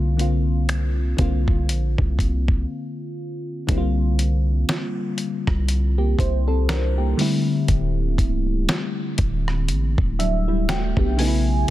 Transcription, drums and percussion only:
0.19 closed hi-hat medium
0.69 finger snap loud
0.69 closed hi-hat medium
1.18 kick loud
1.18 closed hi-hat medium
1.48 kick medium
1.69 closed hi-hat medium
1.98 kick medium
2.19 kick medium
2.19 closed hi-hat medium
2.48 kick loud
3.69 kick loud
3.69 closed hi-hat medium
4.19 closed hi-hat medium
4.69 snare loud
4.69 closed hi-hat medium
5.18 closed hi-hat medium
5.47 kick loud
5.47 cross-stick medium
5.68 closed hi-hat medium
6.19 kick medium
6.19 closed hi-hat medium
6.69 snare loud
6.69 closed hi-hat medium
7.19 open hi-hat medium
7.68 kick loud
7.68 closed hi-hat medium
8.18 kick medium
8.18 closed hi-hat medium
8.69 snare loud
8.69 closed hi-hat medium
9.18 kick loud
9.18 closed hi-hat medium
9.48 cross-stick medium
9.68 closed hi-hat medium
9.98 kick medium
10.20 closed hi-hat medium
10.69 snare loud
10.69 closed hi-hat medium
10.97 kick loud
11.19 open hi-hat medium

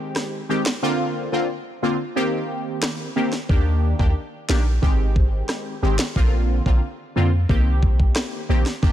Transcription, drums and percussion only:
0.16 cross-stick medium
0.16 snare medium
0.66 snare loud
2.83 cross-stick loud
2.83 snare loud
3.33 snare medium
3.49 kick loud
3.99 kick medium
4.50 snare loud
4.83 kick medium
5.16 kick loud
5.49 cross-stick medium
5.49 snare medium
5.99 snare loud
6.16 kick loud
6.66 kick medium
7.49 kick loud
7.83 kick medium
8.00 kick medium
8.16 cross-stick loud
8.16 snare loud
8.66 snare medium
8.83 kick loud

